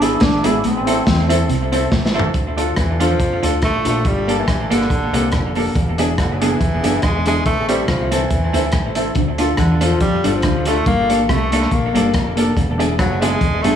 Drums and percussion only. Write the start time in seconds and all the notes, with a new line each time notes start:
0.02 closed hi-hat
0.20 kick, snare, closed hi-hat
0.44 closed hi-hat
0.64 closed hi-hat
0.87 closed hi-hat
1.07 kick, snare, closed hi-hat
1.30 closed hi-hat
1.49 closed hi-hat
1.73 closed hi-hat
1.92 kick, snare
2.06 snare
2.19 floor tom
2.34 kick, closed hi-hat
2.58 closed hi-hat
2.76 kick, cross-stick, closed hi-hat
3.00 closed hi-hat
3.20 kick, closed hi-hat
3.43 closed hi-hat
3.62 kick, cross-stick, closed hi-hat
3.85 closed hi-hat
4.05 kick, closed hi-hat
4.29 closed hi-hat
4.48 kick, cross-stick, closed hi-hat
4.72 closed hi-hat
4.81 cross-stick
4.90 kick, closed hi-hat
5.14 closed hi-hat
5.32 kick, cross-stick, closed hi-hat
5.55 open hi-hat
5.75 kick, closed hi-hat
5.98 closed hi-hat
6.18 kick, cross-stick, closed hi-hat
6.42 closed hi-hat
6.61 kick, closed hi-hat
6.84 closed hi-hat
7.02 kick, cross-stick, closed hi-hat
7.26 closed hi-hat
7.46 kick, closed hi-hat
7.69 closed hi-hat
7.88 kick, cross-stick, closed hi-hat
8.12 closed hi-hat
8.30 kick, closed hi-hat
8.54 closed hi-hat
8.72 kick, cross-stick, closed hi-hat
8.95 closed hi-hat
9.15 kick, closed hi-hat
9.38 closed hi-hat
9.57 kick, cross-stick, closed hi-hat
9.81 closed hi-hat
10.00 kick, closed hi-hat
10.24 closed hi-hat
10.42 kick, cross-stick, closed hi-hat
10.65 cross-stick, closed hi-hat
10.86 kick, closed hi-hat
11.10 closed hi-hat
11.29 kick, cross-stick, closed hi-hat
11.52 closed hi-hat
11.62 cross-stick
11.71 kick, closed hi-hat
11.95 closed hi-hat
12.14 kick, cross-stick, closed hi-hat
12.37 closed hi-hat
12.57 kick, closed hi-hat
12.80 closed hi-hat
12.99 kick, cross-stick, closed hi-hat
13.22 closed hi-hat
13.41 kick, closed hi-hat
13.64 closed hi-hat